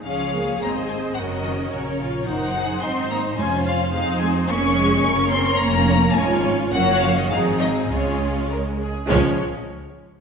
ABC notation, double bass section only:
X:1
M:2/4
L:1/8
Q:1/4=106
K:Db
V:1 name="Double bass section" clef=bass
D,,2 A,,,2 | G,,,2 B,,,2 | G,,,2 A,,,2 | F,,,2 F,,2 |
F,,,2 G,,,2 | F,,,2 A,,,2 | G,,,2 A,,,2 | D,,3 z |
D,, z3 |]